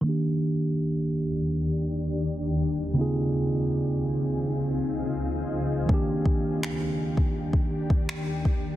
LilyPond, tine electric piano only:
\new Staff \with { instrumentName = "Tine electric piano" } { \time 4/4 \key ees \major \tempo 4 = 82 <ees bes d' g'>1 | <des bes c' ees' f' aes'>1 | <ees bes d' g'>1 | }